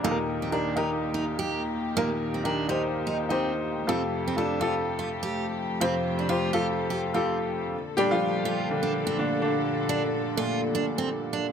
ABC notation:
X:1
M:4/4
L:1/16
Q:"Swing 16ths" 1/4=125
K:Bb
V:1 name="Grand piano"
[EGAB]4 [EGB]2 [EGB]8 z2 | [EGB]4 [EGB]2 [EGc]4- [EGc] [EGc]4- [EGc] | [FGA]4 [FGA]2 [FGA]8 z2 | [FGc]4 [FGc]2 [FGA]4- [FGA] [FGA]4- [FGA] |
z2 [G,G] [F,F]4- [F,F] [D,D]4 D,2 [D,D]2- | [D,D]4 z12 |]
V:2 name="Grand piano" clef=bass
[E,,B,,]16 | [E,,B,,]16 | [F,,C,]16 | [F,,C,]16 |
z2 [B,,A,D]6 z4 [B,,A,D]2 z2 | z6 [B,,A,D]8- [B,,A,D]2 |]
V:3 name="Steel-string acoustic guitar"
B, z2 C D2 E z2 E z G2 z3 | B, z2 C D2 E z2 E z C2 z3 | C z2 C D2 F z2 F z G2 z3 | C z2 D F2 G z2 G z C2 z3 |
z2 D z3 F2 z D z C z4 | z2 D z3 F2 z D z C z2 D z |]
V:4 name="String section"
[E,B,G]16- | [E,B,G]16 | [F,A,G]16- | [F,A,G]16 |
[B,,D,A]16- | [B,,D,A]16 |]